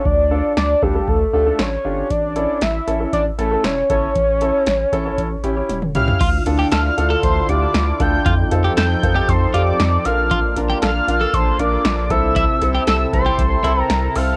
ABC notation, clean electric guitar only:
X:1
M:4/4
L:1/16
Q:1/4=117
K:Aphr
V:1 name="Clean electric guitar"
z16 | z16 | z16 | [K:Dm] F z2 G A z2 A3 z6 |
F z2 G A z2 G2 z F z4 z | F z2 G A z2 A3 z6 | E z2 G A z2 G2 z E z4 z |]